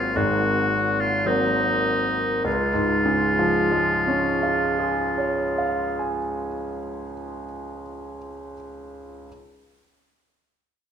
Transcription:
Already playing: G#1 G#2 F#3 A#3 C4 F4
0.16 G#1 G#2 F#4
1.00 F4
1.26 F#3 A#3 C4 D#4
2.44 C#2 F4
2.74 G#2
3.06 C#3
3.39 F3
3.72 G#3
4.07 C#4
4.43 F4
4.79 G#4
5.18 C#5
5.58 F5
5.99 G#5

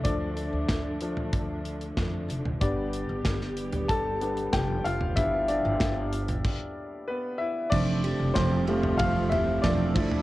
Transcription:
Already playing: D3 F3 A3 D4 E4 D5 E5
0.04 D2 F3 A3 D4 D5, kick, closed hi-hat
0.37 closed hi-hat
0.53 D2
0.69 D2, kick, snare, closed hi-hat
1.01 F3 A3 D4, closed hi-hat
1.17 floor tom
1.33 kick, closed hi-hat
1.65 closed hi-hat
1.81 closed hi-hat
1.97 F2, kick, snare, closed hi-hat
2.29 F1, closed hi-hat
2.46 floor tom
2.61 G1 G3 B3 D4 G4 D5, kick, closed hi-hat
2.93 closed hi-hat
3.09 G1
3.25 G1, kick, snare, closed hi-hat
3.41 snare
3.57 closed hi-hat
3.73 closed hi-hat, floor tom
3.88 A4 A5, kick, closed hi-hat
4.21 G3 B3 D4, closed hi-hat
4.37 closed hi-hat
4.53 F1 G4 G5, kick, snare, closed hi-hat
4.84 F1 F4 F5, closed hi-hat
5.01 floor tom
5.16 G1 F3 G3 B3 D4 E4 E5, kick, closed hi-hat
5.48 D4 D5, closed hi-hat
5.65 G1
5.80 G1, kick, snare, closed hi-hat
6.12 closed hi-hat
6.28 closed hi-hat, floor tom
6.44 kick, crash
7.08 B3 B4
7.38 E4 E5
7.70 F1 C3 F3 G3 A3 C4 D4 G4 D5, kick, crash
8.04 A3 C4 G4, ride
8.20 F1
8.34 F1 F3 A3 C4 C5, kick, snare, ride
8.38 G4
8.68 G3 A3 C4 F4 G4, ride
8.84 floor tom
8.98 F3 A3 F4 F5, kick, ride
9.02 C4 G4
9.30 E4 G4 E5, floor tom, ride
9.34 A3 C4
9.62 E1 F3 A3 C4 D4 G4 D5, kick, snare, ride
9.95 D2 D3 F3 A3 D4 E4, kick, crash
10.12 floor tom

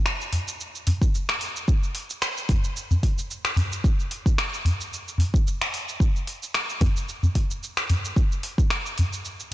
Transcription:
0.06 finger snap, shaker
0.21 shaker
0.33 open hi-hat, udu
0.48 shaker
0.60 shaker
0.75 shaker
0.87 open hi-hat, udu
1.02 kick, shaker
1.15 shaker
1.29 finger snap, shaker
1.41 open hi-hat
1.56 shaker
1.68 kick, shaker
1.83 shaker
1.95 open hi-hat
2.10 shaker
2.22 finger snap, shaker
2.37 shaker
2.49 kick, open hi-hat, udu
2.64 shaker
2.77 shaker
2.91 udu, shaker
3.03 kick, open hi-hat
3.18 shaker
3.31 shaker
3.45 finger snap, shaker
3.57 open hi-hat, udu
3.73 shaker
3.84 kick, shaker
4.00 shaker
4.11 open hi-hat
4.26 kick, shaker
4.38 finger snap, shaker
4.54 shaker
4.65 open hi-hat, udu
4.81 shaker
4.94 shaker
5.08 shaker
5.18 open hi-hat, udu
5.34 kick, shaker
5.47 shaker
5.61 finger snap, shaker
5.74 open hi-hat
5.89 shaker
6.00 kick, shaker
6.16 shaker
6.27 open hi-hat
6.43 shaker
6.54 finger snap, shaker
6.70 shaker
6.81 kick, open hi-hat, udu
6.97 shaker
7.09 shaker
7.23 udu, shaker
7.35 kick, open hi-hat
7.51 shaker
7.63 shaker
7.77 finger snap, shaker
7.90 open hi-hat, udu
8.05 shaker
8.16 kick, shaker
8.32 shaker
8.43 open hi-hat
8.58 kick, shaker
8.70 finger snap, shaker
8.86 shaker
8.98 open hi-hat, udu
9.13 shaker
9.25 shaker
9.40 shaker

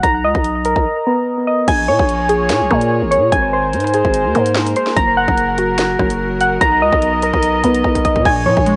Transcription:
0.03 B1 A#5, kick, closed hi-hat
0.24 C#2 D#5
0.35 B1, kick
0.44 closed hi-hat
0.65 A#4, closed hi-hat
0.76 B1, kick
1.07 B3
1.47 D#5
1.68 A#1 A#3 F4 G#4 C#5 G#5, kick, closed hi-hat, crash
1.88 A#2 C#5
1.99 A#1, kick
2.09 closed hi-hat
2.29 G#4, closed hi-hat
2.49 A#2, snare, closed hi-hat
2.61 A#1
2.71 A#2 A#3, kick, cross-stick
2.81 closed hi-hat
3.02 G#1
3.11 C#5, closed hi-hat
3.17 A#2
3.32 G#1 G#3 D#4 A#4 C5 G#5, kick, closed hi-hat
3.53 C5
3.73 G#2, closed hi-hat
3.80 cross-stick, closed hi-hat
3.87 closed hi-hat
3.94 G#4, closed hi-hat
4.05 G#1, kick
4.14 closed hi-hat
4.25 D#2
4.35 G#2 A#3, closed hi-hat
4.46 closed hi-hat
4.55 snare
4.67 closed hi-hat
4.76 C5, closed hi-hat
4.87 snare
4.96 F#1 F#3 F#4 G#4 A#5, kick, closed hi-hat
5.17 F#5
5.28 F#1, kick
5.38 closed hi-hat
5.58 F#4, closed hi-hat
5.78 snare, closed hi-hat
5.99 F#1 F#3, kick, cross-stick
6.10 closed hi-hat
6.41 F#5, closed hi-hat
6.61 B1 B3 D#5 A#5, kick, closed hi-hat
6.82 C#2 D#5
6.93 B1, kick
7.02 closed hi-hat
7.22 A#4, closed hi-hat
7.34 B1, kick
7.43 closed hi-hat
7.64 B1 B3, closed hi-hat
7.75 closed hi-hat
7.84 B1, kick
7.95 kick, closed hi-hat
8.05 D#5, kick, closed hi-hat
8.16 B2, kick
8.25 A#1 A#2 A#3 F4 G#4 C#5 G#5, kick, crash
8.46 A#2 F3 C#5
8.57 A#1, kick
8.66 G#3, closed hi-hat

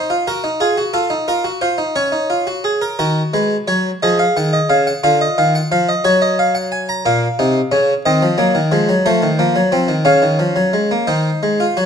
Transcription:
Already playing: C5
0.10 F4
0.27 F#4 A#4
0.44 D#4
0.60 F4 G#4
0.77 F#4
0.94 F4 A4
1.10 D#4
1.28 F4 A#4
1.44 F#4
1.61 F4 C5
1.78 D#4
1.96 C#4 C#5
2.12 D#4
2.30 F4
2.47 F#4
2.64 G#4
2.82 A#4
2.99 D#3 F#4 A#4
3.34 G#3 B4
3.68 F#3 C#5
4.03 F3 G#4 D#5
4.19 F5
4.37 D#3 F#5
4.53 D#5
4.70 C#3 F5
4.87 F#5
5.04 D3 F4 F5
5.21 D#5
5.38 D#3 F5
5.55 F#5
5.72 F3 F5
5.89 D#5
6.04 F#3 F#4 C#5
6.22 D#5
6.39 F5
6.55 F#5
6.72 G#5
6.89 A#5
7.06 A#2 A#3 F5
7.39 C3 D#4
7.72 C#3 C#4
8.06 D#3 C4 D#5
8.22 F3
8.38 F#3 A#3
8.55 D#3
8.72 F3 G#3
8.89 F#3
9.06 F3 A3 C5
9.22 D#3
9.39 F3 A#3
9.56 F#3
9.72 F3 C4
9.88 D#3
10.05 C#3 C#4 F5
10.22 D#3
10.39 F3
10.56 F#3
10.73 G#3
10.91 A#3
11.07 D#3 D#4 C5
11.43 G#3
11.60 F4
11.77 F#3 F#4

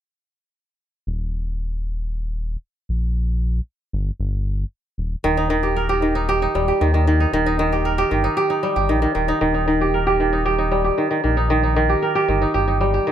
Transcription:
1.07 D#1
2.89 A#1
3.93 G1
4.19 G1
4.98 D#1
5.24 D#1 D#3
5.37 D#4
5.50 D#3
5.63 G4
5.76 A#4
5.89 G4
6.02 D#3
6.15 D#4
6.29 G4
6.42 D#4
6.55 D#1 G3
6.68 G4
6.81 D#2 D#3
6.94 D#3
7.07 D#3
7.20 D#4
7.33 D#1 D#3
7.46 D#4
7.59 D#3
7.72 G4
7.85 A#4
7.98 G4
8.11 G1 D#3
8.24 D#4
8.37 G4
8.50 D#4
8.63 G3
8.76 G1 G4
8.89 A#1 D#3
9.02 D#3
9.15 D#1 D#3
9.28 D#4
9.41 D#1 D#3
9.54 D#4
9.68 D#3
9.81 G4
9.94 A#4
10.07 G4
10.20 D#3
10.33 D#4
10.45 G4
10.58 D#4
10.71 G3
10.84 G4
10.98 D#3
11.11 D#3
11.24 A#1 D#3
11.37 D#4
11.50 D#3
11.63 D#4
11.76 D#3
11.89 G4
12.02 A#4
12.15 G4
12.28 G1 D#3
12.42 D#4
12.54 G1 G4
12.68 D#4
12.81 G3
12.94 G4
13.07 D#3

